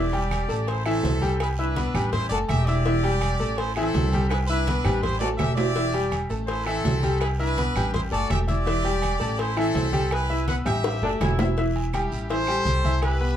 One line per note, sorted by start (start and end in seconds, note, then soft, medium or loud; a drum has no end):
0.00 0.44 E1 medium
0.00 0.10 E4 medium
0.00 0.65 G4 medium
0.00 0.64 D5 loud
0.00 0.10 E5 medium
0.13 0.43 G3 medium
0.13 0.43 G4 medium
0.13 0.43 G5 medium
0.13 high conga soft
0.13 low agogo medium
0.31 cowbell medium
0.31 high conga medium
0.31 low agogo loud
0.31 short guiro medium
0.31 claves medium
0.48 1.00 A1 loud
0.48 0.79 A3 medium
0.48 0.79 A4 medium
0.48 0.79 A5 medium
0.48 high conga soft
0.48 short guiro medium
0.67 0.87 E4 medium
0.67 0.86 C5 loud
0.67 cowbell loud
0.67 high conga soft
0.67 low agogo medium
0.67 long guiro medium
0.85 1.16 E3 loud
0.85 1.37 C4 medium
0.85 1.16 E4 loud
0.85 1.36 A4 loud
0.85 1.16 E5 loud
0.85 high conga soft
0.85 low agogo loud
0.85 claves medium
1.03 1.89 C2 loud
1.03 cowbell medium
1.03 high conga medium
1.03 low timbale medium
1.03 short guiro medium
1.22 1.52 G3 medium
1.22 1.52 G4 medium
1.22 1.52 G5 medium
1.22 high conga medium
1.22 low agogo medium
1.22 short guiro medium
1.40 1.49 E4 medium
1.40 1.48 B4 medium
1.40 cowbell loud
1.40 high conga soft
1.40 low agogo loud
1.40 long guiro medium
1.40 claves medium
1.58 2.10 D4 medium
1.58 1.74 E4 medium
1.58 2.09 B4 medium
1.58 1.74 E5 medium
1.58 1.74 E6 medium
1.58 high conga soft
1.76 1.91 B3 medium
1.76 1.92 B4 medium
1.76 1.92 B5 medium
1.76 cowbell medium
1.76 high conga medium
1.76 low agogo medium
1.76 short guiro medium
1.94 2.28 A1 loud
1.94 2.25 G3 medium
1.94 2.25 G4 medium
1.94 2.25 G5 medium
1.94 high conga soft
1.94 low conga medium
1.94 low agogo loud
1.94 short guiro medium
1.94 claves medium
2.12 2.30 E4 medium
2.12 2.29 C5 loud
2.12 cowbell loud
2.12 high conga soft
2.12 low conga medium
2.12 long guiro medium
2.30 2.48 F#1 medium
2.30 2.61 A3 medium
2.30 2.40 F#4 medium
2.30 2.61 A4 medium
2.30 2.38 D5 loud
2.30 2.62 A5 medium
2.30 high conga soft
2.30 low agogo medium
2.48 3.34 E1 loud
2.48 2.67 G4 medium
2.48 2.66 E5 loud
2.48 cowbell medium
2.48 high conga loud
2.48 low agogo loud
2.48 short guiro medium
2.48 claves medium
2.66 2.83 E4 medium
2.66 3.59 G4 medium
2.66 3.57 D5 loud
2.66 2.83 E5 medium
2.66 2.83 E6 medium
2.66 cowbell medium
2.66 short guiro medium
2.85 3.01 E3 medium
2.85 3.01 E4 medium
2.85 3.01 E5 medium
2.85 cowbell loud
2.85 high conga soft
2.85 long guiro medium
3.03 3.34 G3 medium
3.03 3.34 G4 medium
3.03 3.34 G5 medium
3.03 low agogo medium
3.21 cowbell medium
3.21 high conga medium
3.21 low agogo loud
3.21 short guiro medium
3.21 claves medium
3.40 3.90 A1 medium
3.40 3.69 A3 medium
3.40 3.70 A4 medium
3.40 3.70 A5 medium
3.40 high conga soft
3.40 short guiro medium
3.57 3.77 E4 medium
3.57 3.76 C5 loud
3.57 cowbell loud
3.57 high conga soft
3.57 low agogo medium
3.57 long guiro medium
3.75 4.06 E3 loud
3.75 4.28 C4 medium
3.75 4.07 E4 loud
3.75 4.26 A4 loud
3.75 4.07 E5 medium
3.75 high conga soft
3.75 low agogo loud
3.75 claves medium
3.94 4.79 C2 loud
3.94 cowbell medium
3.94 high conga loud
3.94 low timbale medium
3.94 short guiro medium
4.12 4.43 G3 medium
4.12 4.43 G4 medium
4.12 4.43 G5 medium
4.12 high conga medium
4.12 low agogo medium
4.12 short guiro medium
4.29 4.40 E4 medium
4.29 4.38 B4 medium
4.29 cowbell loud
4.29 high timbale medium
4.29 low agogo loud
4.29 long guiro medium
4.29 claves medium
4.47 5.00 D4 medium
4.47 4.64 E4 medium
4.47 4.99 B4 loud
4.47 4.64 E5 medium
4.47 4.65 E6 medium
4.47 high conga soft
4.66 4.82 B3 medium
4.66 4.82 B4 medium
4.66 4.82 B5 medium
4.66 cowbell medium
4.66 high conga medium
4.66 low agogo medium
4.66 short guiro medium
4.84 5.36 A1 loud
4.84 5.14 G3 medium
4.84 5.15 G4 medium
4.84 5.15 G5 medium
4.84 high conga soft
4.84 low conga medium
4.84 high timbale medium
4.84 low agogo loud
4.84 short guiro medium
4.84 claves medium
5.01 5.22 E4 medium
5.01 5.20 C5 loud
5.01 cowbell loud
5.01 high conga soft
5.01 low conga medium
5.01 long guiro medium
5.19 5.51 A3 medium
5.19 5.30 F#4 medium
5.19 5.51 A4 medium
5.19 5.28 D5 loud
5.19 5.51 A5 medium
5.19 high conga soft
5.19 low timbale medium
5.19 low agogo medium
5.38 6.24 E1 medium
5.38 5.57 G4 medium
5.38 5.55 E5 loud
5.38 cowbell medium
5.38 high conga loud
5.38 low timbale loud
5.38 low agogo loud
5.38 short guiro medium
5.38 claves medium
5.55 5.72 E4 medium
5.55 6.18 G4 medium
5.55 6.17 D5 loud
5.55 5.73 E5 medium
5.55 5.73 E6 medium
5.55 cowbell medium
5.55 low timbale medium
5.55 short guiro medium
5.75 5.90 E3 medium
5.75 5.91 E4 medium
5.75 5.91 E5 medium
5.75 cowbell loud
5.75 high conga soft
5.75 long guiro medium
5.94 6.24 G3 medium
5.94 6.24 G4 medium
5.94 6.24 G5 medium
5.94 high conga soft
5.94 low agogo medium
6.11 cowbell medium
6.11 high conga medium
6.11 low agogo loud
6.11 short guiro medium
6.11 claves medium
6.29 6.81 A1 loud
6.29 6.60 A3 medium
6.29 6.60 A4 medium
6.29 6.60 A5 medium
6.29 high conga soft
6.29 short guiro medium
6.47 6.66 E4 medium
6.47 6.64 C5 loud
6.47 cowbell loud
6.47 high conga soft
6.47 low agogo medium
6.47 long guiro medium
6.65 6.96 E3 loud
6.65 7.21 C4 medium
6.65 6.96 E4 medium
6.65 7.20 A4 loud
6.65 6.97 E5 medium
6.65 high conga soft
6.65 low agogo loud
6.65 claves medium
6.84 7.69 C2 medium
6.84 cowbell medium
6.84 high conga medium
6.84 low timbale medium
6.84 short guiro medium
7.02 7.33 G3 medium
7.02 7.33 G4 medium
7.02 7.33 G5 medium
7.02 high conga medium
7.02 low agogo medium
7.02 short guiro medium
7.20 7.30 E4 medium
7.20 7.28 B4 medium
7.20 cowbell loud
7.20 high conga soft
7.20 low agogo loud
7.20 long guiro medium
7.20 claves medium
7.39 7.91 D4 medium
7.39 7.54 E4 medium
7.39 7.90 B4 loud
7.39 7.54 E5 medium
7.39 7.54 E6 medium
7.39 high conga soft
7.57 7.73 B3 medium
7.57 7.73 B4 medium
7.57 7.73 B5 medium
7.57 cowbell medium
7.57 high conga medium
7.57 low agogo medium
7.57 short guiro medium
7.75 8.09 A1 loud
7.75 8.06 G3 medium
7.75 8.06 G4 medium
7.75 8.06 G5 medium
7.75 high conga soft
7.75 low conga medium
7.75 low agogo loud
7.75 short guiro medium
7.75 claves medium
7.94 8.04 E4 medium
7.94 8.02 C5 loud
7.94 cowbell loud
7.94 high conga soft
7.94 low conga medium
7.94 long guiro medium
8.11 8.29 F#1 medium
8.11 8.41 A3 medium
8.11 8.30 F#4 medium
8.11 8.42 A4 medium
8.11 8.29 D5 loud
8.11 8.42 A5 medium
8.11 high conga soft
8.11 low agogo medium
8.30 9.15 E1 medium
8.30 8.40 G4 medium
8.30 8.38 E5 loud
8.30 cowbell medium
8.30 high conga medium
8.30 low timbale medium
8.30 low agogo loud
8.30 short guiro medium
8.30 claves medium
8.48 8.63 E4 medium
8.48 9.36 G4 medium
8.48 9.35 D5 loud
8.48 8.63 E5 medium
8.48 8.63 E6 medium
8.48 cowbell medium
8.48 high conga medium
8.48 short guiro medium
8.66 8.81 E3 loud
8.66 8.81 E4 medium
8.66 8.82 E5 medium
8.66 cowbell loud
8.66 high conga soft
8.66 long guiro medium
8.84 9.14 G3 medium
8.84 9.14 G4 medium
8.84 9.15 G5 medium
8.84 high conga soft
8.84 low agogo medium
9.02 cowbell medium
9.02 high conga medium
9.02 low agogo loud
9.02 short guiro medium
9.02 claves medium
9.20 9.71 A1 medium
9.20 9.50 A3 medium
9.20 9.50 A4 medium
9.20 9.50 A5 medium
9.20 high conga soft
9.20 short guiro medium
9.39 9.58 E4 medium
9.39 9.57 C5 loud
9.39 cowbell loud
9.39 high conga soft
9.39 low agogo medium
9.39 long guiro medium
9.57 9.87 E3 loud
9.57 10.13 C4 loud
9.57 9.87 E4 loud
9.57 10.12 A4 loud
9.57 9.87 E5 loud
9.57 high conga soft
9.57 low agogo loud
9.57 claves medium
9.74 10.60 C2 medium
9.74 cowbell medium
9.74 high conga medium
9.74 low timbale medium
9.74 short guiro medium
9.93 10.23 G3 medium
9.93 10.23 G4 medium
9.93 10.23 G5 medium
9.93 high conga medium
9.93 low agogo medium
9.93 short guiro medium
10.11 10.49 E4 medium
10.11 10.48 B4 loud
10.11 cowbell loud
10.11 high conga soft
10.11 low agogo loud
10.11 long guiro medium
10.11 claves medium
10.30 10.45 E4 medium
10.30 10.45 E5 medium
10.30 10.45 E6 medium
10.30 high conga soft
10.48 10.63 B3 medium
10.48 10.63 B4 medium
10.48 10.57 B4 medium
10.48 10.56 F#5 loud
10.48 10.63 B5 medium
10.48 cowbell medium
10.48 high conga medium
10.48 low agogo medium
10.48 short guiro medium
10.65 10.99 A1 loud
10.65 10.95 G3 medium
10.65 10.96 G4 medium
10.65 11.35 G4 medium
10.65 11.35 E5 loud
10.65 10.96 G5 medium
10.65 high conga soft
10.65 low conga medium
10.65 high timbale medium
10.65 low agogo loud
10.65 short guiro medium
10.65 claves medium
10.84 cowbell loud
10.84 high bongo medium
10.84 high conga soft
10.84 high timbale loud
10.84 long guiro medium
11.02 11.19 F#1 medium
11.02 11.33 A3 medium
11.02 11.11 D4 loud
11.02 11.33 A4 medium
11.02 11.33 A5 medium
11.02 high conga soft
11.02 low timbale medium
11.02 low agogo medium
11.20 12.05 E1 medium
11.20 11.54 E4 loud
11.20 cowbell medium
11.20 low bongo medium
11.20 high conga loud
11.20 low timbale medium
11.20 low agogo loud
11.20 short guiro medium
11.20 claves medium
11.39 11.54 E4 medium
11.39 11.54 E5 medium
11.39 11.54 E6 medium
11.39 cowbell medium
11.39 low bongo loud
11.39 low timbale medium
11.39 short guiro medium
11.57 11.87 E3 medium
11.57 11.87 E4 medium
11.57 11.87 E5 medium
11.57 cowbell loud
11.57 high conga soft
11.57 long guiro medium
11.76 high conga soft
11.76 low agogo medium
11.93 12.23 G3 medium
11.93 12.27 E4 medium
11.93 12.27 G4 medium
11.93 12.23 G4 medium
11.93 12.24 G5 medium
11.93 cowbell medium
11.93 high conga medium
11.93 low agogo loud
11.93 short guiro medium
11.93 claves medium
12.11 12.62 A1 medium
12.11 high conga soft
12.11 short guiro medium
12.29 12.45 E3 medium
12.29 12.45 E4 medium
12.29 12.99 A4 loud
12.29 12.98 C5 loud
12.29 12.45 E5 medium
12.29 cowbell loud
12.29 high conga soft
12.29 low agogo medium
12.29 long guiro medium
12.47 12.78 G3 medium
12.47 12.78 G4 medium
12.47 12.78 G5 medium
12.47 high conga soft
12.47 low agogo loud
12.47 claves medium
12.65 13.37 C2 loud
12.65 cowbell medium
12.65 high conga medium
12.65 short guiro medium
12.84 13.14 E4 medium
12.84 13.15 E5 medium
12.84 13.14 E6 medium
12.84 high conga medium
12.84 low agogo medium
12.84 short guiro medium
13.02 13.37 G4 medium
13.02 13.37 B4 loud
13.02 cowbell loud
13.02 high conga soft
13.02 low agogo loud
13.02 long guiro medium
13.02 claves medium
13.21 13.35 B3 medium
13.21 13.35 B4 medium
13.21 13.35 B5 medium
13.21 high conga soft